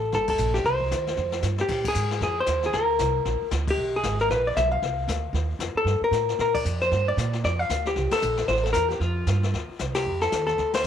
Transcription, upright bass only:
Already playing: A1
0.13 G1
0.39 A#1
0.64 C2
0.91 D#2
1.17 F2
1.43 G2
1.69 A#2
1.95 G#2
2.21 F2
2.47 D#2
2.74 D2
3.00 C2
3.25 A#1
3.42 muted upright bass stroke
3.51 D2
3.78 B1
4.03 G#1
4.30 A#1
4.56 B1
4.82 C2
5.08 D2
5.33 D#2
5.59 F2
5.75 muted upright bass stroke
5.85 G2
6.01 muted upright bass stroke
6.11 A2
6.39 A#2
6.65 F2
6.92 G2
7.17 A#2
7.44 F2
7.70 D2
7.96 C2
8.12 muted upright bass stroke
8.22 A#1
8.48 A1
8.75 E2
9.00 F2
9.27 G2
9.54 D#2
9.69 muted upright bass stroke
9.80 C2
10.06 F2
10.32 D#2
10.58 D2

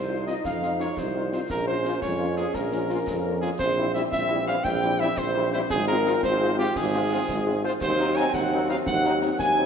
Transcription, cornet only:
Already playing: C5
0.27 D#5
0.45 F5
0.80 C#5
0.99 C5
1.33 C5
1.51 A#4
1.67 C5
2.02 C#5
2.37 G#4
2.54 A#4
3.41 G#4
3.59 C5
3.94 E5
4.12 E5
4.47 F5
4.64 G5
5.00 E5
5.18 C5
5.53 C5
5.70 G#4
5.88 A#4
6.24 C5
6.59 G4
6.77 G#4
7.65 C5
7.82 C5
8.16 G#5
8.34 F#5
8.70 F5
8.87 F#5
9.39 G#5

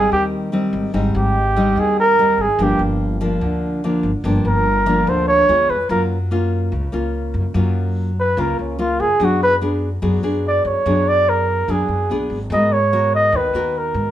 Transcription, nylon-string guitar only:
Already playing: G3 C4 D#4
0.12 D#3
0.52 G3 C4 D#4
0.93 G#2 G3 C4 D#4
1.56 G3 C4 D#4
1.77 D#3
2.19 G3 C4 D#4
2.59 G2 F3 A#3 D4
3.21 F3 A#3 D4
3.41 D3
3.84 F3 A#3 D4
4.25 G2 F3 A#3 D4
4.86 F3 A#3 D4
5.07 D3
5.49 G#3 B3 F4
5.90 F#3 A#3 C#4 F4
6.31 A#3 C#4 F4
6.72 C#3
6.92 A#3 C#4 F4
7.54 F#3 A#3 C#4 F4
8.37 C#3 A#3 C#4 F4
8.79 A#3 C#4 F4
9.20 F#3 B3 D4 G#4
9.61 B3 D4 G#4
10.02 F#3 B3 D4 G#4
10.23 B3 D4 G#4
10.86 F#3 B3 D4 G#4
11.68 F#3 B3 D4 G#4
12.11 B3 D4 G#4
12.51 G#3 B3 F#4 A#4
12.93 B3 F#4 A#4
13.34 D#3
13.55 B3 F#4 A#4

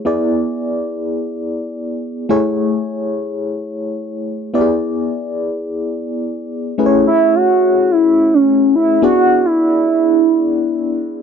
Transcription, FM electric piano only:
0.05 B3 E4 G#4 D5
2.29 A3 E4 G#4 C#5
4.54 B3 E4 G4 D5
4.61 G#4
6.78 A3 C#4 E4 G#4 B4
6.86 C#5
9.02 B3 D4 E4 G#4 D5

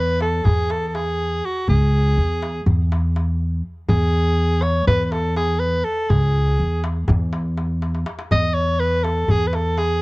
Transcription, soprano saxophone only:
Already playing: B4
0.22 A4
0.44 G#4
0.71 A4
0.87 A4
0.95 G#4
1.45 F#4
1.69 G#4
3.89 G#4
4.62 C#5
4.87 B4
5.05 B4
5.11 A4
5.37 G#4
5.59 B4
5.84 A4
6.10 G#4
8.32 D#5
8.54 C#5
8.80 B4
9.03 A4
9.31 G#4
9.47 B4
9.55 A4
9.78 G#4

